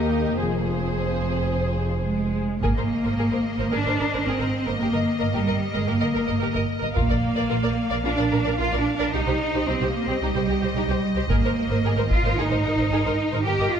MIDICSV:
0, 0, Header, 1, 8, 480
1, 0, Start_track
1, 0, Tempo, 554017
1, 344, Time_signature, 4, 2, 24, 8
1, 3222, Tempo, 541028
1, 12164, End_track
2, 0, Start_track
2, 0, Title_t, "Violin section"
2, 0, Program_c, 0, 48
2, 2277, Note_on_c, 0, 75, 35
2, 6071, Note_off_c, 0, 75, 0
2, 6101, Note_on_c, 0, 77, 40
2, 7988, Note_off_c, 0, 77, 0
2, 8026, Note_on_c, 0, 75, 38
2, 11862, Note_off_c, 0, 75, 0
2, 11873, Note_on_c, 0, 75, 38
2, 12164, Note_off_c, 0, 75, 0
2, 12164, End_track
3, 0, Start_track
3, 0, Title_t, "Violin section"
3, 0, Program_c, 1, 48
3, 0, Note_on_c, 1, 70, 41
3, 0, Note_on_c, 1, 75, 41
3, 308, Note_off_c, 1, 70, 0
3, 308, Note_off_c, 1, 75, 0
3, 343, Note_on_c, 1, 68, 28
3, 344, Note_on_c, 1, 72, 30
3, 2063, Note_off_c, 1, 68, 0
3, 2064, Note_off_c, 1, 72, 0
3, 2278, Note_on_c, 1, 68, 39
3, 2325, Note_off_c, 1, 68, 0
3, 2399, Note_on_c, 1, 72, 20
3, 2445, Note_off_c, 1, 72, 0
3, 2636, Note_on_c, 1, 72, 26
3, 2682, Note_off_c, 1, 72, 0
3, 2756, Note_on_c, 1, 68, 36
3, 2802, Note_off_c, 1, 68, 0
3, 2872, Note_on_c, 1, 72, 28
3, 2918, Note_off_c, 1, 72, 0
3, 3112, Note_on_c, 1, 72, 28
3, 3157, Note_off_c, 1, 72, 0
3, 3217, Note_on_c, 1, 68, 43
3, 3267, Note_off_c, 1, 68, 0
3, 3352, Note_on_c, 1, 72, 32
3, 3398, Note_off_c, 1, 72, 0
3, 3479, Note_on_c, 1, 70, 28
3, 3524, Note_off_c, 1, 70, 0
3, 3584, Note_on_c, 1, 72, 31
3, 3632, Note_off_c, 1, 72, 0
3, 3720, Note_on_c, 1, 68, 35
3, 3765, Note_off_c, 1, 68, 0
3, 3838, Note_on_c, 1, 72, 27
3, 3883, Note_off_c, 1, 72, 0
3, 4081, Note_on_c, 1, 72, 30
3, 4126, Note_off_c, 1, 72, 0
3, 4197, Note_on_c, 1, 67, 38
3, 4243, Note_off_c, 1, 67, 0
3, 4307, Note_on_c, 1, 75, 21
3, 4355, Note_off_c, 1, 75, 0
3, 4545, Note_on_c, 1, 75, 31
3, 4593, Note_off_c, 1, 75, 0
3, 4657, Note_on_c, 1, 67, 42
3, 4706, Note_off_c, 1, 67, 0
3, 4780, Note_on_c, 1, 75, 25
3, 4829, Note_off_c, 1, 75, 0
3, 5017, Note_on_c, 1, 75, 28
3, 5067, Note_off_c, 1, 75, 0
3, 5133, Note_on_c, 1, 67, 50
3, 5183, Note_off_c, 1, 67, 0
3, 5256, Note_on_c, 1, 75, 35
3, 5306, Note_off_c, 1, 75, 0
3, 5383, Note_on_c, 1, 70, 30
3, 5432, Note_off_c, 1, 70, 0
3, 5496, Note_on_c, 1, 75, 35
3, 5546, Note_off_c, 1, 75, 0
3, 5620, Note_on_c, 1, 67, 38
3, 5669, Note_off_c, 1, 67, 0
3, 5738, Note_on_c, 1, 75, 29
3, 5787, Note_off_c, 1, 75, 0
3, 5981, Note_on_c, 1, 75, 29
3, 6030, Note_off_c, 1, 75, 0
3, 6095, Note_on_c, 1, 65, 47
3, 6145, Note_off_c, 1, 65, 0
3, 6222, Note_on_c, 1, 74, 28
3, 6270, Note_off_c, 1, 74, 0
3, 6455, Note_on_c, 1, 74, 34
3, 6505, Note_off_c, 1, 74, 0
3, 6573, Note_on_c, 1, 65, 47
3, 6624, Note_off_c, 1, 65, 0
3, 6696, Note_on_c, 1, 74, 33
3, 6746, Note_off_c, 1, 74, 0
3, 6934, Note_on_c, 1, 74, 37
3, 6985, Note_off_c, 1, 74, 0
3, 7063, Note_on_c, 1, 65, 53
3, 7111, Note_off_c, 1, 65, 0
3, 7175, Note_on_c, 1, 74, 35
3, 7224, Note_off_c, 1, 74, 0
3, 7296, Note_on_c, 1, 70, 35
3, 7345, Note_off_c, 1, 70, 0
3, 7413, Note_on_c, 1, 74, 33
3, 7463, Note_off_c, 1, 74, 0
3, 7540, Note_on_c, 1, 65, 38
3, 7588, Note_off_c, 1, 65, 0
3, 7662, Note_on_c, 1, 74, 37
3, 7711, Note_off_c, 1, 74, 0
3, 7900, Note_on_c, 1, 74, 36
3, 7949, Note_off_c, 1, 74, 0
3, 8024, Note_on_c, 1, 63, 46
3, 8072, Note_off_c, 1, 63, 0
3, 8145, Note_on_c, 1, 72, 33
3, 8193, Note_off_c, 1, 72, 0
3, 8394, Note_on_c, 1, 72, 32
3, 8440, Note_off_c, 1, 72, 0
3, 8505, Note_on_c, 1, 63, 52
3, 8553, Note_off_c, 1, 63, 0
3, 8633, Note_on_c, 1, 72, 30
3, 8679, Note_off_c, 1, 72, 0
3, 8884, Note_on_c, 1, 72, 33
3, 8928, Note_off_c, 1, 72, 0
3, 8999, Note_on_c, 1, 63, 54
3, 9044, Note_off_c, 1, 63, 0
3, 9119, Note_on_c, 1, 72, 36
3, 9164, Note_off_c, 1, 72, 0
3, 9235, Note_on_c, 1, 67, 35
3, 9280, Note_off_c, 1, 67, 0
3, 9358, Note_on_c, 1, 72, 40
3, 9403, Note_off_c, 1, 72, 0
3, 9475, Note_on_c, 1, 63, 45
3, 9520, Note_off_c, 1, 63, 0
3, 9600, Note_on_c, 1, 72, 35
3, 9644, Note_off_c, 1, 72, 0
3, 9829, Note_on_c, 1, 72, 38
3, 9876, Note_off_c, 1, 72, 0
3, 9953, Note_on_c, 1, 68, 53
3, 9999, Note_off_c, 1, 68, 0
3, 10077, Note_on_c, 1, 72, 33
3, 10122, Note_off_c, 1, 72, 0
3, 10316, Note_on_c, 1, 72, 34
3, 10361, Note_off_c, 1, 72, 0
3, 10442, Note_on_c, 1, 68, 54
3, 10486, Note_off_c, 1, 68, 0
3, 10554, Note_on_c, 1, 72, 32
3, 10600, Note_off_c, 1, 72, 0
3, 10791, Note_on_c, 1, 72, 40
3, 10837, Note_off_c, 1, 72, 0
3, 10910, Note_on_c, 1, 68, 53
3, 10957, Note_off_c, 1, 68, 0
3, 11021, Note_on_c, 1, 72, 35
3, 11069, Note_off_c, 1, 72, 0
3, 11145, Note_on_c, 1, 70, 29
3, 11193, Note_off_c, 1, 70, 0
3, 11265, Note_on_c, 1, 72, 44
3, 11313, Note_off_c, 1, 72, 0
3, 11390, Note_on_c, 1, 68, 41
3, 11437, Note_off_c, 1, 68, 0
3, 11501, Note_on_c, 1, 72, 37
3, 11549, Note_off_c, 1, 72, 0
3, 11738, Note_on_c, 1, 72, 41
3, 11788, Note_off_c, 1, 72, 0
3, 11863, Note_on_c, 1, 67, 47
3, 11911, Note_off_c, 1, 67, 0
3, 11985, Note_on_c, 1, 75, 28
3, 12033, Note_off_c, 1, 75, 0
3, 12164, End_track
4, 0, Start_track
4, 0, Title_t, "Viola section"
4, 0, Program_c, 2, 48
4, 0, Note_on_c, 2, 63, 35
4, 0, Note_on_c, 2, 67, 38
4, 306, Note_off_c, 2, 67, 0
4, 308, Note_off_c, 2, 63, 0
4, 345, Note_on_c, 2, 68, 24
4, 347, Note_off_c, 2, 68, 0
4, 347, Note_on_c, 2, 68, 24
4, 2065, Note_off_c, 2, 68, 0
4, 2276, Note_on_c, 2, 70, 36
4, 2323, Note_off_c, 2, 70, 0
4, 2401, Note_on_c, 2, 70, 24
4, 2447, Note_off_c, 2, 70, 0
4, 2635, Note_on_c, 2, 70, 23
4, 2681, Note_off_c, 2, 70, 0
4, 2757, Note_on_c, 2, 70, 38
4, 2802, Note_off_c, 2, 70, 0
4, 2866, Note_on_c, 2, 70, 28
4, 2913, Note_off_c, 2, 70, 0
4, 3104, Note_on_c, 2, 70, 31
4, 3151, Note_off_c, 2, 70, 0
4, 3213, Note_on_c, 2, 70, 36
4, 3263, Note_off_c, 2, 70, 0
4, 3343, Note_on_c, 2, 70, 32
4, 3392, Note_off_c, 2, 70, 0
4, 3458, Note_on_c, 2, 70, 30
4, 3507, Note_off_c, 2, 70, 0
4, 3585, Note_on_c, 2, 70, 25
4, 3633, Note_off_c, 2, 70, 0
4, 3705, Note_on_c, 2, 70, 37
4, 3753, Note_off_c, 2, 70, 0
4, 3818, Note_on_c, 2, 70, 29
4, 3868, Note_off_c, 2, 70, 0
4, 4063, Note_on_c, 2, 70, 33
4, 4111, Note_off_c, 2, 70, 0
4, 4176, Note_on_c, 2, 70, 34
4, 4226, Note_off_c, 2, 70, 0
4, 4296, Note_on_c, 2, 70, 27
4, 4346, Note_off_c, 2, 70, 0
4, 4530, Note_on_c, 2, 70, 28
4, 4581, Note_off_c, 2, 70, 0
4, 4655, Note_on_c, 2, 70, 42
4, 4705, Note_off_c, 2, 70, 0
4, 4775, Note_on_c, 2, 70, 25
4, 4825, Note_off_c, 2, 70, 0
4, 5016, Note_on_c, 2, 70, 27
4, 5066, Note_off_c, 2, 70, 0
4, 5134, Note_on_c, 2, 70, 42
4, 5184, Note_off_c, 2, 70, 0
4, 5255, Note_on_c, 2, 70, 31
4, 5305, Note_off_c, 2, 70, 0
4, 5375, Note_on_c, 2, 70, 33
4, 5425, Note_off_c, 2, 70, 0
4, 5487, Note_on_c, 2, 70, 33
4, 5538, Note_off_c, 2, 70, 0
4, 5603, Note_on_c, 2, 70, 49
4, 5655, Note_off_c, 2, 70, 0
4, 5728, Note_on_c, 2, 70, 39
4, 5780, Note_off_c, 2, 70, 0
4, 5966, Note_on_c, 2, 70, 35
4, 6017, Note_off_c, 2, 70, 0
4, 6091, Note_on_c, 2, 70, 41
4, 6142, Note_off_c, 2, 70, 0
4, 6220, Note_on_c, 2, 70, 29
4, 6269, Note_off_c, 2, 70, 0
4, 6459, Note_on_c, 2, 70, 35
4, 6508, Note_off_c, 2, 70, 0
4, 6574, Note_on_c, 2, 70, 45
4, 6624, Note_off_c, 2, 70, 0
4, 6699, Note_on_c, 2, 70, 29
4, 6748, Note_off_c, 2, 70, 0
4, 6948, Note_on_c, 2, 70, 33
4, 6996, Note_off_c, 2, 70, 0
4, 7068, Note_on_c, 2, 70, 48
4, 7115, Note_off_c, 2, 70, 0
4, 7192, Note_on_c, 2, 70, 33
4, 7238, Note_off_c, 2, 70, 0
4, 7308, Note_on_c, 2, 70, 37
4, 7355, Note_off_c, 2, 70, 0
4, 7432, Note_on_c, 2, 70, 33
4, 7478, Note_off_c, 2, 70, 0
4, 7548, Note_on_c, 2, 70, 49
4, 7596, Note_off_c, 2, 70, 0
4, 7670, Note_on_c, 2, 70, 42
4, 7717, Note_off_c, 2, 70, 0
4, 7914, Note_on_c, 2, 70, 43
4, 7960, Note_off_c, 2, 70, 0
4, 8039, Note_on_c, 2, 67, 38
4, 8085, Note_off_c, 2, 67, 0
4, 8147, Note_on_c, 2, 67, 36
4, 8195, Note_off_c, 2, 67, 0
4, 8395, Note_on_c, 2, 67, 31
4, 8441, Note_off_c, 2, 67, 0
4, 8514, Note_on_c, 2, 67, 48
4, 8560, Note_off_c, 2, 67, 0
4, 8629, Note_on_c, 2, 67, 39
4, 8676, Note_off_c, 2, 67, 0
4, 8871, Note_on_c, 2, 67, 34
4, 8918, Note_off_c, 2, 67, 0
4, 8993, Note_on_c, 2, 67, 55
4, 9040, Note_off_c, 2, 67, 0
4, 9105, Note_on_c, 2, 67, 37
4, 9153, Note_off_c, 2, 67, 0
4, 9222, Note_on_c, 2, 67, 38
4, 9270, Note_off_c, 2, 67, 0
4, 9343, Note_on_c, 2, 67, 40
4, 9391, Note_off_c, 2, 67, 0
4, 9472, Note_on_c, 2, 67, 55
4, 9518, Note_off_c, 2, 67, 0
4, 9588, Note_on_c, 2, 67, 42
4, 9635, Note_off_c, 2, 67, 0
4, 9828, Note_on_c, 2, 67, 38
4, 9875, Note_off_c, 2, 67, 0
4, 9945, Note_on_c, 2, 70, 50
4, 9992, Note_off_c, 2, 70, 0
4, 10081, Note_on_c, 2, 70, 35
4, 10125, Note_off_c, 2, 70, 0
4, 10318, Note_on_c, 2, 70, 32
4, 10362, Note_off_c, 2, 70, 0
4, 10425, Note_on_c, 2, 70, 54
4, 10472, Note_off_c, 2, 70, 0
4, 10542, Note_on_c, 2, 70, 33
4, 10590, Note_off_c, 2, 70, 0
4, 10793, Note_on_c, 2, 70, 33
4, 10839, Note_off_c, 2, 70, 0
4, 10912, Note_on_c, 2, 70, 48
4, 10958, Note_off_c, 2, 70, 0
4, 11032, Note_on_c, 2, 70, 36
4, 11078, Note_off_c, 2, 70, 0
4, 11153, Note_on_c, 2, 70, 31
4, 11199, Note_off_c, 2, 70, 0
4, 11271, Note_on_c, 2, 70, 33
4, 11317, Note_off_c, 2, 70, 0
4, 11394, Note_on_c, 2, 70, 54
4, 11440, Note_off_c, 2, 70, 0
4, 11512, Note_on_c, 2, 70, 42
4, 11558, Note_off_c, 2, 70, 0
4, 11750, Note_on_c, 2, 70, 39
4, 11797, Note_off_c, 2, 70, 0
4, 11871, Note_on_c, 2, 70, 41
4, 11918, Note_off_c, 2, 70, 0
4, 11998, Note_on_c, 2, 70, 31
4, 12043, Note_off_c, 2, 70, 0
4, 12164, End_track
5, 0, Start_track
5, 0, Title_t, "Cello section"
5, 0, Program_c, 3, 48
5, 0, Note_on_c, 3, 39, 46
5, 309, Note_off_c, 3, 39, 0
5, 352, Note_on_c, 3, 41, 30
5, 1767, Note_off_c, 3, 41, 0
5, 1791, Note_on_c, 3, 56, 36
5, 2239, Note_off_c, 3, 56, 0
5, 2275, Note_on_c, 3, 58, 54
5, 3222, Note_off_c, 3, 58, 0
5, 3222, Note_on_c, 3, 62, 54
5, 3695, Note_off_c, 3, 62, 0
5, 3703, Note_on_c, 3, 60, 43
5, 4065, Note_off_c, 3, 60, 0
5, 4072, Note_on_c, 3, 58, 43
5, 4174, Note_off_c, 3, 58, 0
5, 4185, Note_on_c, 3, 58, 50
5, 4656, Note_off_c, 3, 58, 0
5, 4666, Note_on_c, 3, 55, 47
5, 5018, Note_off_c, 3, 55, 0
5, 5035, Note_on_c, 3, 56, 41
5, 5148, Note_on_c, 3, 58, 45
5, 5150, Note_off_c, 3, 56, 0
5, 5627, Note_off_c, 3, 58, 0
5, 6106, Note_on_c, 3, 58, 60
5, 7031, Note_off_c, 3, 58, 0
5, 7074, Note_on_c, 3, 62, 54
5, 7548, Note_off_c, 3, 62, 0
5, 7551, Note_on_c, 3, 65, 58
5, 7704, Note_off_c, 3, 65, 0
5, 7718, Note_on_c, 3, 62, 55
5, 7866, Note_off_c, 3, 62, 0
5, 7876, Note_on_c, 3, 62, 63
5, 8028, Note_off_c, 3, 62, 0
5, 8036, Note_on_c, 3, 63, 63
5, 8501, Note_off_c, 3, 63, 0
5, 8512, Note_on_c, 3, 60, 56
5, 8668, Note_off_c, 3, 60, 0
5, 8677, Note_on_c, 3, 58, 49
5, 8831, Note_off_c, 3, 58, 0
5, 8836, Note_on_c, 3, 60, 52
5, 8990, Note_off_c, 3, 60, 0
5, 8991, Note_on_c, 3, 55, 48
5, 9692, Note_off_c, 3, 55, 0
5, 9943, Note_on_c, 3, 58, 69
5, 10627, Note_off_c, 3, 58, 0
5, 10662, Note_on_c, 3, 65, 61
5, 10897, Note_off_c, 3, 65, 0
5, 10903, Note_on_c, 3, 63, 58
5, 11857, Note_on_c, 3, 67, 58
5, 11864, Note_off_c, 3, 63, 0
5, 12097, Note_off_c, 3, 67, 0
5, 12098, Note_on_c, 3, 65, 55
5, 12164, Note_off_c, 3, 65, 0
5, 12164, End_track
6, 0, Start_track
6, 0, Title_t, "French horn section"
6, 0, Program_c, 4, 60
6, 0, Note_on_c, 4, 58, 59
6, 318, Note_off_c, 4, 58, 0
6, 339, Note_on_c, 4, 53, 37
6, 1761, Note_off_c, 4, 53, 0
6, 12164, End_track
7, 0, Start_track
7, 0, Title_t, "Double bass section"
7, 0, Program_c, 5, 48
7, 0, Note_on_c, 5, 39, 42
7, 310, Note_off_c, 5, 39, 0
7, 345, Note_on_c, 5, 29, 28
7, 2064, Note_off_c, 5, 29, 0
7, 2272, Note_on_c, 5, 32, 40
7, 2320, Note_off_c, 5, 32, 0
7, 2391, Note_on_c, 5, 32, 31
7, 2438, Note_off_c, 5, 32, 0
7, 2632, Note_on_c, 5, 32, 24
7, 2679, Note_off_c, 5, 32, 0
7, 2756, Note_on_c, 5, 32, 35
7, 2801, Note_off_c, 5, 32, 0
7, 2876, Note_on_c, 5, 32, 26
7, 2921, Note_off_c, 5, 32, 0
7, 3115, Note_on_c, 5, 32, 32
7, 3160, Note_off_c, 5, 32, 0
7, 3228, Note_on_c, 5, 32, 40
7, 3275, Note_off_c, 5, 32, 0
7, 3347, Note_on_c, 5, 32, 28
7, 3395, Note_off_c, 5, 32, 0
7, 3462, Note_on_c, 5, 32, 27
7, 3511, Note_off_c, 5, 32, 0
7, 3591, Note_on_c, 5, 32, 29
7, 3638, Note_off_c, 5, 32, 0
7, 3707, Note_on_c, 5, 32, 38
7, 3754, Note_off_c, 5, 32, 0
7, 3825, Note_on_c, 5, 32, 26
7, 3873, Note_off_c, 5, 32, 0
7, 4068, Note_on_c, 5, 32, 28
7, 4116, Note_off_c, 5, 32, 0
7, 4185, Note_on_c, 5, 31, 45
7, 4233, Note_off_c, 5, 31, 0
7, 4306, Note_on_c, 5, 31, 29
7, 4354, Note_off_c, 5, 31, 0
7, 4548, Note_on_c, 5, 31, 30
7, 4596, Note_off_c, 5, 31, 0
7, 4666, Note_on_c, 5, 31, 42
7, 4714, Note_off_c, 5, 31, 0
7, 4788, Note_on_c, 5, 31, 29
7, 4836, Note_off_c, 5, 31, 0
7, 5026, Note_on_c, 5, 31, 29
7, 5073, Note_off_c, 5, 31, 0
7, 5142, Note_on_c, 5, 31, 44
7, 5191, Note_off_c, 5, 31, 0
7, 5266, Note_on_c, 5, 31, 33
7, 5313, Note_off_c, 5, 31, 0
7, 5384, Note_on_c, 5, 31, 33
7, 5432, Note_off_c, 5, 31, 0
7, 5502, Note_on_c, 5, 31, 28
7, 5551, Note_off_c, 5, 31, 0
7, 5622, Note_on_c, 5, 31, 41
7, 5671, Note_off_c, 5, 31, 0
7, 5738, Note_on_c, 5, 31, 30
7, 5787, Note_off_c, 5, 31, 0
7, 5977, Note_on_c, 5, 31, 30
7, 6026, Note_off_c, 5, 31, 0
7, 6102, Note_on_c, 5, 34, 44
7, 6151, Note_off_c, 5, 34, 0
7, 6221, Note_on_c, 5, 34, 35
7, 6270, Note_off_c, 5, 34, 0
7, 6459, Note_on_c, 5, 34, 33
7, 6508, Note_off_c, 5, 34, 0
7, 6582, Note_on_c, 5, 34, 45
7, 6631, Note_off_c, 5, 34, 0
7, 6701, Note_on_c, 5, 34, 31
7, 6750, Note_off_c, 5, 34, 0
7, 6941, Note_on_c, 5, 34, 35
7, 6990, Note_off_c, 5, 34, 0
7, 7057, Note_on_c, 5, 34, 47
7, 7106, Note_off_c, 5, 34, 0
7, 7177, Note_on_c, 5, 34, 36
7, 7226, Note_off_c, 5, 34, 0
7, 7307, Note_on_c, 5, 34, 36
7, 7354, Note_off_c, 5, 34, 0
7, 7424, Note_on_c, 5, 34, 34
7, 7472, Note_off_c, 5, 34, 0
7, 7543, Note_on_c, 5, 34, 52
7, 7591, Note_off_c, 5, 34, 0
7, 7668, Note_on_c, 5, 34, 31
7, 7715, Note_off_c, 5, 34, 0
7, 7906, Note_on_c, 5, 34, 31
7, 7954, Note_off_c, 5, 34, 0
7, 8024, Note_on_c, 5, 36, 50
7, 8072, Note_off_c, 5, 36, 0
7, 8148, Note_on_c, 5, 36, 40
7, 8196, Note_off_c, 5, 36, 0
7, 8390, Note_on_c, 5, 36, 35
7, 8437, Note_off_c, 5, 36, 0
7, 8502, Note_on_c, 5, 36, 44
7, 8551, Note_off_c, 5, 36, 0
7, 8619, Note_on_c, 5, 36, 38
7, 8668, Note_off_c, 5, 36, 0
7, 8857, Note_on_c, 5, 36, 38
7, 8906, Note_off_c, 5, 36, 0
7, 8979, Note_on_c, 5, 36, 49
7, 9028, Note_off_c, 5, 36, 0
7, 9100, Note_on_c, 5, 36, 36
7, 9148, Note_off_c, 5, 36, 0
7, 9218, Note_on_c, 5, 36, 34
7, 9267, Note_off_c, 5, 36, 0
7, 9335, Note_on_c, 5, 36, 38
7, 9385, Note_off_c, 5, 36, 0
7, 9455, Note_on_c, 5, 36, 50
7, 9504, Note_off_c, 5, 36, 0
7, 9574, Note_on_c, 5, 36, 33
7, 9624, Note_off_c, 5, 36, 0
7, 9817, Note_on_c, 5, 36, 34
7, 9866, Note_off_c, 5, 36, 0
7, 9933, Note_on_c, 5, 32, 49
7, 9983, Note_off_c, 5, 32, 0
7, 10056, Note_on_c, 5, 32, 36
7, 10105, Note_off_c, 5, 32, 0
7, 10297, Note_on_c, 5, 32, 34
7, 10346, Note_off_c, 5, 32, 0
7, 10412, Note_on_c, 5, 32, 48
7, 10462, Note_off_c, 5, 32, 0
7, 10540, Note_on_c, 5, 32, 34
7, 10588, Note_off_c, 5, 32, 0
7, 10781, Note_on_c, 5, 32, 35
7, 10829, Note_off_c, 5, 32, 0
7, 10903, Note_on_c, 5, 32, 55
7, 10951, Note_off_c, 5, 32, 0
7, 11024, Note_on_c, 5, 32, 37
7, 11072, Note_off_c, 5, 32, 0
7, 11140, Note_on_c, 5, 32, 35
7, 11188, Note_off_c, 5, 32, 0
7, 11259, Note_on_c, 5, 32, 33
7, 11308, Note_off_c, 5, 32, 0
7, 11376, Note_on_c, 5, 32, 46
7, 11425, Note_off_c, 5, 32, 0
7, 11501, Note_on_c, 5, 32, 33
7, 11550, Note_off_c, 5, 32, 0
7, 11744, Note_on_c, 5, 32, 31
7, 11793, Note_off_c, 5, 32, 0
7, 11866, Note_on_c, 5, 31, 50
7, 11914, Note_off_c, 5, 31, 0
7, 11981, Note_on_c, 5, 31, 37
7, 12030, Note_off_c, 5, 31, 0
7, 12164, End_track
8, 0, Start_track
8, 0, Title_t, "Taiko and cinematic ensemble drums"
8, 2276, Note_on_c, 9, 41, 34
8, 2362, Note_off_c, 9, 41, 0
8, 6105, Note_on_c, 9, 41, 36
8, 6193, Note_off_c, 9, 41, 0
8, 9943, Note_on_c, 9, 41, 38
8, 10032, Note_off_c, 9, 41, 0
8, 10667, Note_on_c, 9, 41, 27
8, 10756, Note_off_c, 9, 41, 0
8, 12164, End_track
0, 0, End_of_file